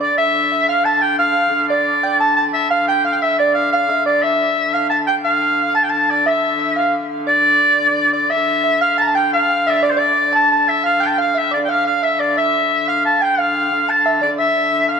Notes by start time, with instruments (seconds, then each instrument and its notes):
Already playing: hurdy-gurdy D3
0.01 soft synth lead D5, shawm D5
0.17 hurdy-gurdy D3, shawm E5, soft synth lead E5
0.52 soft synth lead E5
0.68 shawm F5, soft synth lead F5
0.84 shawm A5, soft synth lead A5
1.02 shawm G5
1.19 shawm F5, soft synth lead F5
1.69 shawm D5, soft synth lead D5
2.03 soft synth lead G5
2.20 shawm A5, soft synth lead A5
2.36 shawm A5, soft synth lead A5
2.54 shawm E5
2.70 shawm F5, soft synth lead F5
2.88 shawm G5, soft synth lead G5
3.05 soft synth lead F5, shawm F5
3.12 soft synth lead F5, shawm F5 G5
3.22 shawm E5, soft synth lead E5
3.39 shawm D5, soft synth lead D5
3.54 shawm F5
3.72 shawm F5, soft synth lead F5
3.89 soft synth lead E5
4.06 shawm D5, soft synth lead D5
4.22 hurdy-gurdy D3, shawm E5, soft synth lead E5
4.73 shawm F5, soft synth lead F5
4.90 shawm A5, soft synth lead A5
5.07 shawm G5, soft synth lead G5
5.24 shawm F5, soft synth lead F5
5.75 soft synth lead A5, shawm A5
5.83 shawm G5
5.89 soft synth lead A5, shawm A5
6.10 shawm D5
6.26 soft synth lead E5, shawm E5
6.59 soft synth lead E5
6.76 soft synth lead F5, shawm F5
7.27 soft synth lead D5, shawm D5
8.13 shawm D5, soft synth lead D5
8.30 hurdy-gurdy D3, soft synth lead E5, shawm E5
8.64 soft synth lead E5
8.81 soft synth lead F5, shawm F5
8.98 soft synth lead A5, shawm A5 A#5
9.07 shawm A5
9.15 soft synth lead G5, shawm G5
9.33 shawm F5, soft synth lead F5
9.50 soft synth lead F5
9.67 shawm D5 E5, soft synth lead E5
9.74 soft synth lead E5, shawm E5
9.83 shawm D5, soft synth lead D5
9.90 shawm C5
9.97 soft synth lead D5, shawm D5
10.33 soft synth lead A5, shawm A5
10.51 shawm A5
10.68 shawm E5
10.84 soft synth lead F5, shawm F5
11.00 soft synth lead G5, shawm G5
11.06 shawm A5
11.11 shawm G5
11.18 soft synth lead F5, shawm F5
11.35 soft synth lead E5, shawm E5
11.51 soft synth lead D5, shawm D5
11.65 soft synth lead F5, shawm G5
11.70 shawm F5
11.85 soft synth lead F5, shawm F5
12.03 soft synth lead E5, shawm E5
12.20 soft synth lead D5, shawm D5
12.36 hurdy-gurdy D3, soft synth lead E5, shawm E5
12.88 soft synth lead F5, shawm F5
13.05 shawm A5
13.22 soft synth lead G5, shawm G5
13.38 soft synth lead F5, shawm F5
13.89 soft synth lead A5, shawm A5
14.06 soft synth lead E5
14.22 soft synth lead D5, shawm D5
14.38 soft synth lead E5, shawm E5
14.89 soft synth lead F5, shawm F5